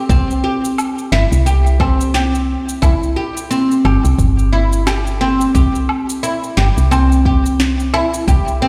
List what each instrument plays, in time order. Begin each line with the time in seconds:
0.09 fm bass C2, oud C4, kick, shaker
0.31 shaker
0.44 oud G4
0.65 shaker
0.78 low woodblock, shaker
0.99 shaker
1.12 fm bass G1, oud E4, snare
1.32 fm bass C2, shaker
1.46 oud G4, shaker
1.67 shaker
1.80 oud C4, kick, low woodblock
2.01 shaker
2.14 oud G4, snare, shaker
2.35 shaker
2.69 shaker
2.82 fm bass C2, oud E4, kick, low woodblock, shaker
3.03 shaker
3.16 oud G4
3.37 shaker
3.51 oud C4, shaker
3.71 shaker
3.85 fm bass G1, oud G4, low woodblock
4.04 fm bass C2, shaker
4.18 fm bass G1, kick, shaker
4.39 shaker
4.53 oud E4
4.73 shaker
4.87 oud G4, snare, low woodblock, shaker
5.07 shaker
5.21 oud C4
5.41 shaker
5.55 fm bass C2, oud G4, kick, shaker
5.75 shaker
5.89 low woodblock
6.09 shaker
6.23 oud E4, shaker
6.44 shaker
6.57 fm bass G1, oud G4, snare
6.77 fm bass C2, shaker
6.91 oud C4, low woodblock, shaker
7.12 shaker
7.25 oud G4, kick
7.46 shaker
7.60 snare, shaker
7.80 shaker
7.94 oud E4, low woodblock
8.14 shaker
8.28 fm bass C2, oud G4, kick, shaker
8.48 shaker
8.62 oud C4